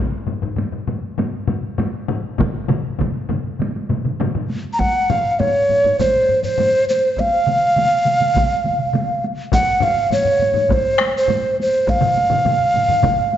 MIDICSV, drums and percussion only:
0, 0, Header, 1, 2, 480
1, 0, Start_track
1, 0, Tempo, 601202
1, 1912, Time_signature, 4, 2, 24, 8
1, 5258, Tempo, 586510
1, 10813, End_track
2, 0, Start_track
2, 0, Title_t, "Taiko and cinematic ensemble drums"
2, 100, Note_on_c, 9, 48, 25
2, 180, Note_off_c, 9, 48, 0
2, 213, Note_on_c, 9, 45, 76
2, 222, Note_on_c, 9, 48, 56
2, 293, Note_off_c, 9, 45, 0
2, 302, Note_off_c, 9, 48, 0
2, 336, Note_on_c, 9, 45, 74
2, 347, Note_on_c, 9, 48, 27
2, 415, Note_off_c, 9, 45, 0
2, 427, Note_off_c, 9, 48, 0
2, 451, Note_on_c, 9, 45, 74
2, 466, Note_on_c, 9, 48, 66
2, 531, Note_off_c, 9, 45, 0
2, 546, Note_off_c, 9, 48, 0
2, 577, Note_on_c, 9, 45, 66
2, 591, Note_on_c, 9, 48, 24
2, 657, Note_off_c, 9, 45, 0
2, 671, Note_off_c, 9, 48, 0
2, 699, Note_on_c, 9, 45, 84
2, 708, Note_on_c, 9, 48, 57
2, 778, Note_off_c, 9, 45, 0
2, 788, Note_off_c, 9, 48, 0
2, 836, Note_on_c, 9, 48, 23
2, 915, Note_off_c, 9, 48, 0
2, 941, Note_on_c, 9, 45, 95
2, 952, Note_on_c, 9, 48, 75
2, 1020, Note_off_c, 9, 45, 0
2, 1032, Note_off_c, 9, 48, 0
2, 1178, Note_on_c, 9, 45, 98
2, 1192, Note_on_c, 9, 48, 56
2, 1258, Note_off_c, 9, 45, 0
2, 1272, Note_off_c, 9, 48, 0
2, 1311, Note_on_c, 9, 48, 24
2, 1391, Note_off_c, 9, 48, 0
2, 1423, Note_on_c, 9, 45, 93
2, 1434, Note_on_c, 9, 48, 74
2, 1503, Note_off_c, 9, 45, 0
2, 1514, Note_off_c, 9, 48, 0
2, 1555, Note_on_c, 9, 48, 19
2, 1635, Note_off_c, 9, 48, 0
2, 1664, Note_on_c, 9, 45, 105
2, 1677, Note_on_c, 9, 48, 52
2, 1743, Note_off_c, 9, 45, 0
2, 1756, Note_off_c, 9, 48, 0
2, 1793, Note_on_c, 9, 48, 20
2, 1873, Note_off_c, 9, 48, 0
2, 1902, Note_on_c, 9, 45, 101
2, 1911, Note_on_c, 9, 47, 102
2, 1916, Note_on_c, 9, 41, 101
2, 1916, Note_on_c, 9, 48, 70
2, 1982, Note_off_c, 9, 45, 0
2, 1991, Note_off_c, 9, 47, 0
2, 1996, Note_off_c, 9, 41, 0
2, 1996, Note_off_c, 9, 48, 0
2, 2040, Note_on_c, 9, 48, 19
2, 2119, Note_off_c, 9, 48, 0
2, 2143, Note_on_c, 9, 45, 107
2, 2156, Note_on_c, 9, 47, 97
2, 2159, Note_on_c, 9, 48, 51
2, 2223, Note_off_c, 9, 45, 0
2, 2235, Note_off_c, 9, 47, 0
2, 2239, Note_off_c, 9, 48, 0
2, 2284, Note_on_c, 9, 48, 24
2, 2364, Note_off_c, 9, 48, 0
2, 2385, Note_on_c, 9, 45, 94
2, 2399, Note_on_c, 9, 47, 96
2, 2402, Note_on_c, 9, 41, 73
2, 2405, Note_on_c, 9, 48, 65
2, 2465, Note_off_c, 9, 45, 0
2, 2479, Note_off_c, 9, 47, 0
2, 2482, Note_off_c, 9, 41, 0
2, 2485, Note_off_c, 9, 48, 0
2, 2526, Note_on_c, 9, 48, 21
2, 2606, Note_off_c, 9, 48, 0
2, 2628, Note_on_c, 9, 45, 84
2, 2631, Note_on_c, 9, 47, 95
2, 2643, Note_on_c, 9, 48, 56
2, 2707, Note_off_c, 9, 45, 0
2, 2711, Note_off_c, 9, 47, 0
2, 2723, Note_off_c, 9, 48, 0
2, 2767, Note_on_c, 9, 48, 22
2, 2847, Note_off_c, 9, 48, 0
2, 2868, Note_on_c, 9, 45, 69
2, 2870, Note_on_c, 9, 47, 65
2, 2888, Note_on_c, 9, 48, 76
2, 2948, Note_off_c, 9, 45, 0
2, 2950, Note_off_c, 9, 47, 0
2, 2968, Note_off_c, 9, 48, 0
2, 3003, Note_on_c, 9, 48, 45
2, 3083, Note_off_c, 9, 48, 0
2, 3107, Note_on_c, 9, 47, 72
2, 3112, Note_on_c, 9, 45, 76
2, 3121, Note_on_c, 9, 48, 55
2, 3187, Note_off_c, 9, 47, 0
2, 3191, Note_off_c, 9, 45, 0
2, 3201, Note_off_c, 9, 48, 0
2, 3231, Note_on_c, 9, 45, 64
2, 3233, Note_on_c, 9, 47, 67
2, 3242, Note_on_c, 9, 48, 23
2, 3311, Note_off_c, 9, 45, 0
2, 3313, Note_off_c, 9, 47, 0
2, 3322, Note_off_c, 9, 48, 0
2, 3355, Note_on_c, 9, 47, 100
2, 3357, Note_on_c, 9, 45, 100
2, 3360, Note_on_c, 9, 48, 72
2, 3435, Note_off_c, 9, 47, 0
2, 3437, Note_off_c, 9, 45, 0
2, 3440, Note_off_c, 9, 48, 0
2, 3471, Note_on_c, 9, 47, 66
2, 3472, Note_on_c, 9, 45, 74
2, 3475, Note_on_c, 9, 48, 21
2, 3551, Note_off_c, 9, 47, 0
2, 3552, Note_off_c, 9, 45, 0
2, 3555, Note_off_c, 9, 48, 0
2, 3590, Note_on_c, 9, 48, 56
2, 3670, Note_off_c, 9, 48, 0
2, 3713, Note_on_c, 9, 48, 23
2, 3793, Note_off_c, 9, 48, 0
2, 3824, Note_on_c, 9, 48, 63
2, 3835, Note_on_c, 9, 41, 71
2, 3904, Note_off_c, 9, 48, 0
2, 3915, Note_off_c, 9, 41, 0
2, 3952, Note_on_c, 9, 48, 20
2, 4032, Note_off_c, 9, 48, 0
2, 4070, Note_on_c, 9, 45, 93
2, 4076, Note_on_c, 9, 48, 49
2, 4150, Note_off_c, 9, 45, 0
2, 4155, Note_off_c, 9, 48, 0
2, 4190, Note_on_c, 9, 48, 21
2, 4270, Note_off_c, 9, 48, 0
2, 4310, Note_on_c, 9, 48, 63
2, 4313, Note_on_c, 9, 45, 84
2, 4390, Note_off_c, 9, 48, 0
2, 4393, Note_off_c, 9, 45, 0
2, 4438, Note_on_c, 9, 48, 20
2, 4518, Note_off_c, 9, 48, 0
2, 4546, Note_on_c, 9, 45, 57
2, 4556, Note_on_c, 9, 48, 46
2, 4625, Note_off_c, 9, 45, 0
2, 4636, Note_off_c, 9, 48, 0
2, 4667, Note_on_c, 9, 45, 67
2, 4677, Note_on_c, 9, 48, 43
2, 4747, Note_off_c, 9, 45, 0
2, 4757, Note_off_c, 9, 48, 0
2, 4785, Note_on_c, 9, 45, 75
2, 4786, Note_on_c, 9, 41, 75
2, 4797, Note_on_c, 9, 48, 65
2, 4865, Note_off_c, 9, 45, 0
2, 4866, Note_off_c, 9, 41, 0
2, 4877, Note_off_c, 9, 48, 0
2, 4917, Note_on_c, 9, 48, 19
2, 4997, Note_off_c, 9, 48, 0
2, 5021, Note_on_c, 9, 45, 58
2, 5100, Note_off_c, 9, 45, 0
2, 5136, Note_on_c, 9, 45, 61
2, 5158, Note_on_c, 9, 48, 19
2, 5216, Note_off_c, 9, 45, 0
2, 5238, Note_off_c, 9, 48, 0
2, 5251, Note_on_c, 9, 45, 89
2, 5271, Note_on_c, 9, 48, 60
2, 5333, Note_off_c, 9, 45, 0
2, 5352, Note_off_c, 9, 48, 0
2, 5399, Note_on_c, 9, 48, 17
2, 5481, Note_off_c, 9, 48, 0
2, 5520, Note_on_c, 9, 48, 50
2, 5601, Note_off_c, 9, 48, 0
2, 5644, Note_on_c, 9, 48, 19
2, 5726, Note_off_c, 9, 48, 0
2, 5749, Note_on_c, 9, 41, 70
2, 5764, Note_on_c, 9, 48, 61
2, 5831, Note_off_c, 9, 41, 0
2, 5846, Note_off_c, 9, 48, 0
2, 5884, Note_on_c, 9, 48, 18
2, 5966, Note_off_c, 9, 48, 0
2, 5979, Note_on_c, 9, 47, 86
2, 5996, Note_on_c, 9, 48, 50
2, 6061, Note_off_c, 9, 47, 0
2, 6077, Note_off_c, 9, 48, 0
2, 6117, Note_on_c, 9, 48, 20
2, 6199, Note_off_c, 9, 48, 0
2, 6221, Note_on_c, 9, 47, 87
2, 6238, Note_on_c, 9, 48, 60
2, 6303, Note_off_c, 9, 47, 0
2, 6320, Note_off_c, 9, 48, 0
2, 6358, Note_on_c, 9, 48, 20
2, 6440, Note_off_c, 9, 48, 0
2, 6461, Note_on_c, 9, 47, 65
2, 6473, Note_on_c, 9, 48, 46
2, 6543, Note_off_c, 9, 47, 0
2, 6555, Note_off_c, 9, 48, 0
2, 6581, Note_on_c, 9, 47, 64
2, 6592, Note_on_c, 9, 48, 42
2, 6663, Note_off_c, 9, 47, 0
2, 6673, Note_off_c, 9, 48, 0
2, 6696, Note_on_c, 9, 47, 82
2, 6713, Note_on_c, 9, 41, 83
2, 6719, Note_on_c, 9, 48, 66
2, 6778, Note_off_c, 9, 47, 0
2, 6794, Note_off_c, 9, 41, 0
2, 6801, Note_off_c, 9, 48, 0
2, 6837, Note_on_c, 9, 48, 19
2, 6919, Note_off_c, 9, 48, 0
2, 6941, Note_on_c, 9, 47, 64
2, 6954, Note_on_c, 9, 48, 51
2, 7022, Note_off_c, 9, 47, 0
2, 7036, Note_off_c, 9, 48, 0
2, 7065, Note_on_c, 9, 47, 57
2, 7146, Note_off_c, 9, 47, 0
2, 7178, Note_on_c, 9, 47, 89
2, 7194, Note_on_c, 9, 48, 67
2, 7260, Note_off_c, 9, 47, 0
2, 7276, Note_off_c, 9, 48, 0
2, 7313, Note_on_c, 9, 48, 19
2, 7395, Note_off_c, 9, 48, 0
2, 7432, Note_on_c, 9, 48, 54
2, 7514, Note_off_c, 9, 48, 0
2, 7561, Note_on_c, 9, 48, 20
2, 7643, Note_off_c, 9, 48, 0
2, 7658, Note_on_c, 9, 45, 100
2, 7670, Note_on_c, 9, 41, 99
2, 7673, Note_on_c, 9, 48, 63
2, 7739, Note_off_c, 9, 45, 0
2, 7752, Note_off_c, 9, 41, 0
2, 7755, Note_off_c, 9, 48, 0
2, 7892, Note_on_c, 9, 45, 103
2, 7913, Note_on_c, 9, 48, 46
2, 7974, Note_off_c, 9, 45, 0
2, 7994, Note_off_c, 9, 48, 0
2, 8036, Note_on_c, 9, 48, 21
2, 8118, Note_off_c, 9, 48, 0
2, 8137, Note_on_c, 9, 45, 67
2, 8153, Note_on_c, 9, 48, 64
2, 8219, Note_off_c, 9, 45, 0
2, 8235, Note_off_c, 9, 48, 0
2, 8256, Note_on_c, 9, 45, 65
2, 8272, Note_on_c, 9, 48, 21
2, 8338, Note_off_c, 9, 45, 0
2, 8354, Note_off_c, 9, 48, 0
2, 8375, Note_on_c, 9, 45, 57
2, 8398, Note_on_c, 9, 48, 53
2, 8457, Note_off_c, 9, 45, 0
2, 8480, Note_off_c, 9, 48, 0
2, 8491, Note_on_c, 9, 45, 72
2, 8520, Note_on_c, 9, 48, 47
2, 8573, Note_off_c, 9, 45, 0
2, 8602, Note_off_c, 9, 48, 0
2, 8617, Note_on_c, 9, 45, 82
2, 8629, Note_on_c, 9, 41, 86
2, 8632, Note_on_c, 9, 48, 68
2, 8699, Note_off_c, 9, 45, 0
2, 8711, Note_off_c, 9, 41, 0
2, 8713, Note_off_c, 9, 48, 0
2, 8760, Note_on_c, 9, 48, 19
2, 8842, Note_off_c, 9, 48, 0
2, 8856, Note_on_c, 9, 37, 72
2, 8877, Note_on_c, 9, 48, 51
2, 8938, Note_off_c, 9, 37, 0
2, 8959, Note_off_c, 9, 48, 0
2, 9000, Note_on_c, 9, 48, 21
2, 9082, Note_off_c, 9, 48, 0
2, 9100, Note_on_c, 9, 45, 95
2, 9116, Note_on_c, 9, 48, 68
2, 9182, Note_off_c, 9, 45, 0
2, 9198, Note_off_c, 9, 48, 0
2, 9232, Note_on_c, 9, 48, 19
2, 9314, Note_off_c, 9, 48, 0
2, 9360, Note_on_c, 9, 48, 52
2, 9442, Note_off_c, 9, 48, 0
2, 9480, Note_on_c, 9, 48, 20
2, 9562, Note_off_c, 9, 48, 0
2, 9588, Note_on_c, 9, 41, 90
2, 9595, Note_on_c, 9, 48, 63
2, 9670, Note_off_c, 9, 41, 0
2, 9677, Note_off_c, 9, 48, 0
2, 9697, Note_on_c, 9, 45, 94
2, 9698, Note_on_c, 9, 47, 94
2, 9712, Note_on_c, 9, 48, 19
2, 9779, Note_off_c, 9, 45, 0
2, 9780, Note_off_c, 9, 47, 0
2, 9794, Note_off_c, 9, 48, 0
2, 9832, Note_on_c, 9, 48, 54
2, 9914, Note_off_c, 9, 48, 0
2, 9935, Note_on_c, 9, 45, 92
2, 9942, Note_on_c, 9, 47, 94
2, 9949, Note_on_c, 9, 48, 21
2, 10017, Note_off_c, 9, 45, 0
2, 10023, Note_off_c, 9, 47, 0
2, 10031, Note_off_c, 9, 48, 0
2, 10057, Note_on_c, 9, 45, 83
2, 10061, Note_on_c, 9, 47, 90
2, 10064, Note_on_c, 9, 48, 64
2, 10139, Note_off_c, 9, 45, 0
2, 10143, Note_off_c, 9, 47, 0
2, 10146, Note_off_c, 9, 48, 0
2, 10193, Note_on_c, 9, 48, 22
2, 10274, Note_off_c, 9, 48, 0
2, 10295, Note_on_c, 9, 45, 61
2, 10303, Note_on_c, 9, 47, 66
2, 10305, Note_on_c, 9, 48, 47
2, 10377, Note_off_c, 9, 45, 0
2, 10385, Note_off_c, 9, 47, 0
2, 10387, Note_off_c, 9, 48, 0
2, 10413, Note_on_c, 9, 45, 72
2, 10415, Note_on_c, 9, 47, 68
2, 10494, Note_off_c, 9, 45, 0
2, 10497, Note_off_c, 9, 47, 0
2, 10530, Note_on_c, 9, 45, 88
2, 10530, Note_on_c, 9, 47, 94
2, 10534, Note_on_c, 9, 41, 91
2, 10539, Note_on_c, 9, 48, 72
2, 10612, Note_off_c, 9, 45, 0
2, 10612, Note_off_c, 9, 47, 0
2, 10616, Note_off_c, 9, 41, 0
2, 10621, Note_off_c, 9, 48, 0
2, 10669, Note_on_c, 9, 48, 20
2, 10751, Note_off_c, 9, 48, 0
2, 10780, Note_on_c, 9, 48, 52
2, 10813, Note_off_c, 9, 48, 0
2, 10813, End_track
0, 0, End_of_file